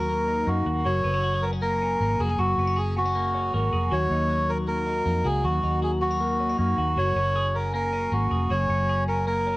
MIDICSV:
0, 0, Header, 1, 4, 480
1, 0, Start_track
1, 0, Key_signature, 6, "major"
1, 0, Tempo, 382409
1, 1071, Time_signature, 4, 2, 24, 8
1, 12010, End_track
2, 0, Start_track
2, 0, Title_t, "Melodica"
2, 0, Program_c, 0, 22
2, 0, Note_on_c, 0, 70, 91
2, 596, Note_on_c, 0, 66, 69
2, 612, Note_off_c, 0, 70, 0
2, 1073, Note_on_c, 0, 73, 93
2, 1088, Note_off_c, 0, 66, 0
2, 1782, Note_on_c, 0, 70, 81
2, 1814, Note_off_c, 0, 73, 0
2, 1892, Note_off_c, 0, 70, 0
2, 2026, Note_on_c, 0, 70, 86
2, 2757, Note_on_c, 0, 68, 89
2, 2771, Note_off_c, 0, 70, 0
2, 2995, Note_on_c, 0, 66, 88
2, 3001, Note_off_c, 0, 68, 0
2, 3488, Note_off_c, 0, 66, 0
2, 3492, Note_on_c, 0, 68, 82
2, 3706, Note_off_c, 0, 68, 0
2, 3737, Note_on_c, 0, 66, 92
2, 4435, Note_off_c, 0, 66, 0
2, 4454, Note_on_c, 0, 66, 74
2, 4927, Note_on_c, 0, 73, 91
2, 4937, Note_off_c, 0, 66, 0
2, 5644, Note_on_c, 0, 70, 91
2, 5661, Note_off_c, 0, 73, 0
2, 5749, Note_off_c, 0, 70, 0
2, 5872, Note_on_c, 0, 70, 90
2, 6594, Note_on_c, 0, 68, 90
2, 6614, Note_off_c, 0, 70, 0
2, 6831, Note_on_c, 0, 66, 79
2, 6840, Note_off_c, 0, 68, 0
2, 7278, Note_off_c, 0, 66, 0
2, 7317, Note_on_c, 0, 68, 74
2, 7424, Note_off_c, 0, 68, 0
2, 7546, Note_on_c, 0, 66, 91
2, 8250, Note_off_c, 0, 66, 0
2, 8269, Note_on_c, 0, 66, 77
2, 8758, Note_on_c, 0, 73, 87
2, 8765, Note_off_c, 0, 66, 0
2, 9478, Note_on_c, 0, 70, 79
2, 9496, Note_off_c, 0, 73, 0
2, 9698, Note_off_c, 0, 70, 0
2, 9722, Note_on_c, 0, 70, 94
2, 10204, Note_on_c, 0, 66, 68
2, 10211, Note_off_c, 0, 70, 0
2, 10680, Note_on_c, 0, 73, 94
2, 10691, Note_off_c, 0, 66, 0
2, 11345, Note_off_c, 0, 73, 0
2, 11401, Note_on_c, 0, 70, 83
2, 11616, Note_off_c, 0, 70, 0
2, 11635, Note_on_c, 0, 70, 92
2, 12010, Note_off_c, 0, 70, 0
2, 12010, End_track
3, 0, Start_track
3, 0, Title_t, "Clean electric guitar"
3, 0, Program_c, 1, 27
3, 0, Note_on_c, 1, 54, 69
3, 0, Note_on_c, 1, 63, 44
3, 0, Note_on_c, 1, 66, 68
3, 110, Note_on_c, 1, 58, 57
3, 330, Note_off_c, 1, 63, 0
3, 345, Note_on_c, 1, 63, 52
3, 583, Note_off_c, 1, 58, 0
3, 588, Note_on_c, 1, 58, 54
3, 825, Note_off_c, 1, 66, 0
3, 830, Note_on_c, 1, 66, 57
3, 1066, Note_off_c, 1, 54, 0
3, 1071, Note_on_c, 1, 54, 72
3, 1116, Note_off_c, 1, 63, 0
3, 1305, Note_on_c, 1, 59, 55
3, 1343, Note_off_c, 1, 58, 0
3, 1428, Note_off_c, 1, 59, 0
3, 1428, Note_on_c, 1, 61, 47
3, 1543, Note_off_c, 1, 66, 0
3, 1548, Note_on_c, 1, 66, 62
3, 1680, Note_off_c, 1, 66, 0
3, 1680, Note_on_c, 1, 68, 54
3, 1790, Note_off_c, 1, 61, 0
3, 1800, Note_on_c, 1, 59, 51
3, 1917, Note_off_c, 1, 59, 0
3, 1917, Note_on_c, 1, 61, 47
3, 2032, Note_on_c, 1, 58, 54
3, 2265, Note_off_c, 1, 61, 0
3, 2280, Note_on_c, 1, 61, 54
3, 2518, Note_off_c, 1, 58, 0
3, 2523, Note_on_c, 1, 58, 55
3, 2756, Note_off_c, 1, 68, 0
3, 2763, Note_on_c, 1, 66, 60
3, 2877, Note_off_c, 1, 66, 0
3, 2877, Note_on_c, 1, 68, 50
3, 2991, Note_off_c, 1, 54, 0
3, 2996, Note_on_c, 1, 54, 69
3, 3236, Note_off_c, 1, 61, 0
3, 3246, Note_on_c, 1, 59, 56
3, 3355, Note_off_c, 1, 59, 0
3, 3355, Note_on_c, 1, 61, 48
3, 3453, Note_off_c, 1, 68, 0
3, 3468, Note_on_c, 1, 68, 62
3, 3714, Note_off_c, 1, 61, 0
3, 3720, Note_on_c, 1, 59, 53
3, 3835, Note_off_c, 1, 59, 0
3, 3835, Note_on_c, 1, 61, 50
3, 3954, Note_off_c, 1, 58, 0
3, 3959, Note_on_c, 1, 58, 56
3, 4180, Note_off_c, 1, 61, 0
3, 4195, Note_on_c, 1, 61, 54
3, 4435, Note_off_c, 1, 58, 0
3, 4440, Note_on_c, 1, 58, 54
3, 4663, Note_off_c, 1, 68, 0
3, 4678, Note_on_c, 1, 68, 52
3, 4908, Note_off_c, 1, 54, 0
3, 4913, Note_on_c, 1, 54, 75
3, 4962, Note_off_c, 1, 61, 0
3, 4963, Note_off_c, 1, 68, 0
3, 5163, Note_on_c, 1, 63, 57
3, 5391, Note_on_c, 1, 66, 68
3, 5622, Note_off_c, 1, 63, 0
3, 5637, Note_on_c, 1, 63, 52
3, 5863, Note_off_c, 1, 58, 0
3, 5868, Note_on_c, 1, 58, 55
3, 6095, Note_off_c, 1, 63, 0
3, 6110, Note_on_c, 1, 63, 54
3, 6343, Note_off_c, 1, 58, 0
3, 6348, Note_on_c, 1, 58, 57
3, 6577, Note_off_c, 1, 66, 0
3, 6582, Note_on_c, 1, 66, 57
3, 6824, Note_off_c, 1, 54, 0
3, 6829, Note_on_c, 1, 54, 72
3, 7052, Note_off_c, 1, 63, 0
3, 7067, Note_on_c, 1, 63, 58
3, 7300, Note_off_c, 1, 66, 0
3, 7306, Note_on_c, 1, 66, 62
3, 7536, Note_off_c, 1, 63, 0
3, 7541, Note_on_c, 1, 61, 57
3, 7663, Note_off_c, 1, 61, 0
3, 7663, Note_on_c, 1, 63, 46
3, 7779, Note_off_c, 1, 58, 0
3, 7784, Note_on_c, 1, 58, 61
3, 8024, Note_off_c, 1, 63, 0
3, 8030, Note_on_c, 1, 61, 56
3, 8148, Note_off_c, 1, 61, 0
3, 8148, Note_on_c, 1, 63, 46
3, 8258, Note_off_c, 1, 58, 0
3, 8263, Note_on_c, 1, 58, 54
3, 8505, Note_off_c, 1, 66, 0
3, 8511, Note_on_c, 1, 66, 58
3, 8747, Note_off_c, 1, 54, 0
3, 8753, Note_on_c, 1, 54, 77
3, 8798, Note_off_c, 1, 63, 0
3, 8992, Note_on_c, 1, 61, 54
3, 9229, Note_off_c, 1, 66, 0
3, 9234, Note_on_c, 1, 68, 66
3, 9271, Note_off_c, 1, 58, 0
3, 9471, Note_off_c, 1, 61, 0
3, 9476, Note_on_c, 1, 61, 56
3, 9714, Note_on_c, 1, 58, 57
3, 9949, Note_off_c, 1, 61, 0
3, 9954, Note_on_c, 1, 61, 53
3, 10179, Note_off_c, 1, 58, 0
3, 10194, Note_on_c, 1, 58, 57
3, 10429, Note_off_c, 1, 68, 0
3, 10434, Note_on_c, 1, 68, 55
3, 10660, Note_off_c, 1, 54, 0
3, 10675, Note_on_c, 1, 54, 69
3, 10911, Note_off_c, 1, 61, 0
3, 10916, Note_on_c, 1, 61, 58
3, 11156, Note_off_c, 1, 68, 0
3, 11161, Note_on_c, 1, 68, 65
3, 11395, Note_off_c, 1, 61, 0
3, 11400, Note_on_c, 1, 61, 59
3, 11619, Note_off_c, 1, 58, 0
3, 11634, Note_on_c, 1, 58, 58
3, 11877, Note_off_c, 1, 61, 0
3, 11882, Note_on_c, 1, 61, 49
3, 12010, Note_off_c, 1, 54, 0
3, 12010, Note_off_c, 1, 58, 0
3, 12010, Note_off_c, 1, 61, 0
3, 12010, Note_off_c, 1, 68, 0
3, 12010, End_track
4, 0, Start_track
4, 0, Title_t, "Fingered electric bass"
4, 0, Program_c, 2, 33
4, 0, Note_on_c, 2, 39, 85
4, 540, Note_off_c, 2, 39, 0
4, 588, Note_on_c, 2, 42, 83
4, 793, Note_off_c, 2, 42, 0
4, 824, Note_on_c, 2, 39, 73
4, 1031, Note_off_c, 2, 39, 0
4, 1068, Note_on_c, 2, 30, 89
4, 1273, Note_off_c, 2, 30, 0
4, 1310, Note_on_c, 2, 30, 92
4, 2461, Note_off_c, 2, 30, 0
4, 2510, Note_on_c, 2, 32, 76
4, 2715, Note_off_c, 2, 32, 0
4, 2751, Note_on_c, 2, 29, 83
4, 2955, Note_off_c, 2, 29, 0
4, 2993, Note_on_c, 2, 30, 92
4, 3197, Note_off_c, 2, 30, 0
4, 3230, Note_on_c, 2, 30, 83
4, 4381, Note_off_c, 2, 30, 0
4, 4443, Note_on_c, 2, 32, 78
4, 4642, Note_off_c, 2, 32, 0
4, 4681, Note_on_c, 2, 29, 77
4, 4881, Note_off_c, 2, 29, 0
4, 4917, Note_on_c, 2, 39, 94
4, 5119, Note_off_c, 2, 39, 0
4, 5152, Note_on_c, 2, 39, 92
4, 6302, Note_off_c, 2, 39, 0
4, 6347, Note_on_c, 2, 41, 74
4, 6553, Note_off_c, 2, 41, 0
4, 6585, Note_on_c, 2, 37, 86
4, 6792, Note_off_c, 2, 37, 0
4, 6823, Note_on_c, 2, 39, 99
4, 7031, Note_off_c, 2, 39, 0
4, 7066, Note_on_c, 2, 39, 79
4, 8219, Note_off_c, 2, 39, 0
4, 8266, Note_on_c, 2, 42, 73
4, 8472, Note_off_c, 2, 42, 0
4, 8506, Note_on_c, 2, 39, 77
4, 8712, Note_off_c, 2, 39, 0
4, 8740, Note_on_c, 2, 30, 98
4, 8949, Note_off_c, 2, 30, 0
4, 8982, Note_on_c, 2, 30, 83
4, 10136, Note_off_c, 2, 30, 0
4, 10191, Note_on_c, 2, 32, 74
4, 10395, Note_off_c, 2, 32, 0
4, 10433, Note_on_c, 2, 29, 80
4, 10636, Note_off_c, 2, 29, 0
4, 10674, Note_on_c, 2, 30, 98
4, 10876, Note_off_c, 2, 30, 0
4, 10911, Note_on_c, 2, 30, 89
4, 12010, Note_off_c, 2, 30, 0
4, 12010, End_track
0, 0, End_of_file